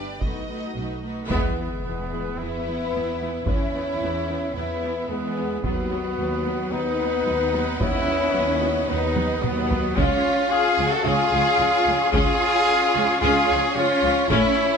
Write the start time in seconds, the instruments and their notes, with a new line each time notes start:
Already playing: double bass section G1, cello section G2, viola section G3 D4, french horn section B3 D4, violin section G4 B4 D5
0.21 double bass section B1, cello section B2, french horn section A3 F#4, viola section A3 D#4, violin section F#4 B4 D#5, taiko
0.49 viola section A3 D#4, violin section F#4 B4
0.75 double bass section B1, cello section B2, viola section A3 D#4, violin section F#4 B4
1.03 viola section A3 D#4, violin section F#4 B4
1.27 double bass section E2, cello section G#3, string section B3 E4 B4 E5, violin section B3, trumpet B3, french horn section G#4, taiko, sub drop
1.32 viola section E3 B3
1.60 viola section E3 B3
1.84 double bass section E2, viola section E3 B3
2.13 viola section E3 B3
2.37 double bass section E2, viola section E3 B3, cello section B3, violin section E4, trumpet E4, french horn section B4
2.67 viola section E3 B3
2.92 double bass section E2, viola section E3 B3
3.21 viola section E3 B3
3.45 double bass section E2, viola section E3 B3, cello section C#4, violin section E4, trumpet E4, french horn section C#5, taiko
3.75 viola section E3 B3
3.99 double bass section E2, viola section E3 B3
4.30 viola section E3 B3
4.53 double bass section E2, viola section E3 B3, cello section B3, violin section E4, trumpet E4, french horn section B4
4.83 viola section E3 B3
5.08 double bass section E2, viola section E3 B3, cello section G#3, violin section B3, trumpet B3, french horn section G#4
5.37 viola section E3 B3
5.63 double bass section D#2, cello section F#3, viola section F#3 B3, trumpet B3, violin section B3, string section B3 B4 D#5 F#5, french horn section F#4, taiko
5.91 viola section F#3 B3
6.17 double bass section D#2, viola section F#3 B3
6.46 viola section F#3 B3
6.71 double bass section D#2, viola section F#3 B3, cello section B3, trumpet D#4, violin section D#4, french horn section B4
7.00 viola section F#3 B3
7.26 double bass section D#2, viola section F#3 B3
7.53 viola section F#3 B3
7.79 double bass section D#2, viola section F#3 B3, cello section C#4, trumpet E4, violin section E4, french horn section C#5, taiko
8.07 viola section F#3 B3
8.34 double bass section D#2, viola section F#3 B3
8.61 viola section F#3 B3
8.87 double bass section D#2, viola section F#3 B3, cello section B3, trumpet D#4, violin section D#4, french horn section B4
9.16 viola section F#3 B3, taiko high
9.42 double bass section D#2, cello section F#3, viola section F#3 B3, trumpet B3, violin section B3, french horn section F#4, taiko mid
9.70 viola section F#3 B3, taiko low
9.96 double bass section C#2, viola section G#3 C#4, cello section C#4, string section C#4 F4 G#4 C#5, trumpet F4, violin section F4, french horn section C#5, taiko
10.50 cello section F4, trumpet G#4, violin section G#4, french horn section F5
10.77 double bass section C#2, viola section F3 G#3
10.91 cello section F#4, french horn section F#4, violin section A4, trumpet A4
11.04 double bass section C#2, viola section G#3 C#4, cello section F4, trumpet G#4, violin section G#4, french horn section F5
11.31 double bass section C#2, viola section F3 G#3
11.59 double bass section C#2, viola section C#3 F3
11.86 double bass section C#2, viola section F3 G#3
12.12 double bass section C#2, viola section G#3 C#4, cello section F4, trumpet G#4, violin section G#4, french horn section F5, taiko
12.95 double bass section C#2, viola section F3 G#3
13.21 double bass section C#2, viola section G#3 C#4, cello section F4, trumpet G#4, violin section G#4, french horn section F5
13.48 double bass section C#2, viola section F3 G#3
13.74 double bass section C#2, viola section C#3 F3, cello section C#4, trumpet F4, violin section F4, french horn section C#5
14.02 double bass section C#2, viola section F3 G#3
14.29 double bass section A1, viola section A3 C#4, cello section C#4, trumpet E4, violin section E4, string section E4 A4, french horn section C#5, taiko